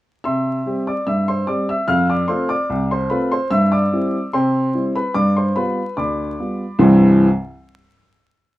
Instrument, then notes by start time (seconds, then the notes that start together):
upright piano
0.24 C3 E5 C6 E6
0.66 G3 C4 G4
0.87 D5 D6
1.07 G2 E5 E6
1.28 C5 C6
1.47 G3 C4 G4 D5 D6
1.69 E5 E6
1.88 F2 F5 F6
2.10 D5 D6
2.28 A3 C4 F4 C5 C6
2.49 D5 D6
2.70 C2
2.91 C5 C6
3.10 A3 C4 F4 B4 B5
3.32 C5 C6
3.51 G2 E5 E6
3.72 D5 D6
3.93 G3 C4 E4
4.33 C3 C5 G5 C6
4.74 G3 C4 E4
4.95 B4 B5
5.14 G2 D5 D6
5.37 C5 C6
5.56 G3 B3 F4 B4 B5
5.97 D2 D5 B5 D6
6.40 G3 B3 F4
6.79 C2 G2 E3 G3 C4 E4 C6